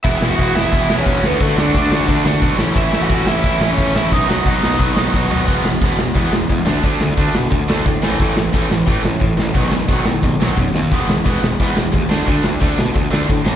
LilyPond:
<<
  \new Staff \with { instrumentName = "Lead electric guitar" } { \time 4/4 \key e \major \tempo 4 = 177 <e' e''>8. <fis' fis''>8. <e' e''>4~ <e' e''>16 <cis' cis''>8. <b b'>8 | <a a'>8 <d' d''>8 <d' d''>4. r4. | <e' e''>8. <fis' fis''>8. <e' e''>4~ <e' e''>16 <cis' cis''>8. <e' e''>8 | <dis' dis''>8 <fis' fis''>8 <dis' dis''>4. r4. |
r1 | r1 | r1 | r1 |
r1 | r1 | }
  \new Staff \with { instrumentName = "Distorted electric guitar" } { \clef bass \time 4/4 \key e \major <e gis b e'>8 <e gis b e'>8 <e gis b e'>8 <e gis b e'>8 <e gis b e'>8 <e gis b e'>8 <e gis b e'>8 <d a d' fis'>8 | <d a d' fis'>8 <d a d' fis'>8 <d a d' fis'>8 <d a d' fis'>8 <d a d' fis'>8 <d a d' fis'>8 <d a d' fis'>8 <a, e a cis' e'>8 | <a, e a cis' e'>8 <a, e a cis' e'>8 <a, e a cis' e'>8 <a, e a cis' e'>8 <a, e a cis' e'>8 <a, e a cis' e'>8 <a, e a cis' e'>8 <a, e a cis' e'>8 | <b, dis fis b dis'>8 <b, dis fis b dis'>8 <b, dis fis b dis'>8 <b, dis fis b dis'>8 <b, dis fis b dis'>8 <b, dis fis b dis'>8 <b, dis fis b dis'>8 <b, dis fis b dis'>8 |
<e gis b>8 <e gis>8 <e gis b>8 <e gis>8 <e gis b>8 <e gis>8 <e gis>8 <d a d'>8 | <d a d'>8 <d a>8 <d a d'>8 <d a>8 <d a>8 <d a d'>8 <d a>8 <a, e a>8 | <a, e a>8 <a, e>8 <a, e a>8 <a, e>8 <a, e a>8 <a, e>8 <a, e>8 <a, e>8 | <b, dis fis>8 <b, dis>8 <b, dis fis>8 <b, dis>8 <b, dis>8 <b, dis fis>8 <b, dis>8 <b, dis>8 |
<e gis b>8 <e gis>8 <e gis b>8 <e gis>8 <e gis b>8 <e gis>8 <e gis>8 <d a d'>8 | <d a d'>8 <d a>8 <d a d'>8 <d a>8 <d a>8 <d a d'>8 <d a>8 <a, e a>8 | }
  \new Staff \with { instrumentName = "Picked electric bass" } { \clef bass \time 4/4 \key e \major e,,8 e,,8 e,,8 e,,8 e,,8 e,,8 e,,8 d,8 | d,8 d,8 d,8 d,8 d,8 d,8 b,,8 a,,8 | a,,8 a,,8 a,,8 a,,8 a,,8 a,,8 a,,8 a,,8 | b,,8 b,,8 b,,8 b,,8 b,,8 b,,8 b,,8 b,,8 |
e,,8 e,,8 e,,8 e,,8 e,8 e,,8 e,8 d,8 | d,8 d,8 d,8 b,8 d,8 d,8 a,8 a,,8 | a,,8 a,,8 a,,8 a,,8 a,8 a,,8 a,8 a,,8 | b,,8 b,,8 b,,8 a,8 b,,8 b,,8 fis,8 dis,8 |
e,,8 e,,8 e,,8 e,,8 e,8 e,,8 dis,8 d,8 | d,8 d,8 d,8 b,8 d,8 d,8 a,8 a,,8 | }
  \new DrumStaff \with { instrumentName = "Drums" } \drummode { \time 4/4 <hho bd>8 sn8 <hho bd>8 sn8 <hho bd>8 sn8 <hho bd>8 sn8 | <hho bd>8 sn8 <hho bd>8 sn8 <hho bd>8 sn8 <hho bd>8 sn8 | <hho bd>8 sn8 <hho bd>8 sn8 <hho bd>8 sn8 <hho bd>8 sn8 | <hho bd>8 sn8 <hho bd>8 sn8 <hho bd>8 sn8 <bd sn>8 tomfh8 |
<cymc bd>8 sn8 <hho bd>8 sn8 <hho bd>8 sn8 <hho bd>8 sn8 | <hho bd>8 sn8 <hho bd>8 sn8 <hho bd>8 sn8 <hho bd>8 sn8 | <hho bd>8 sn8 <hho bd>8 sn8 <hho bd>8 sn8 <hho bd>8 sn8 | <hho bd>8 sn8 <hho bd>8 sn8 <hho bd>8 sn8 <bd sn>8 sn8 |
<hho bd>8 sn8 <hho bd>8 sn8 <hho bd>8 sn8 <hho bd>8 sn8 | <hho bd>8 sn8 <hho bd>8 sn8 <hho bd>8 sn8 <hho bd>8 sn8 | }
>>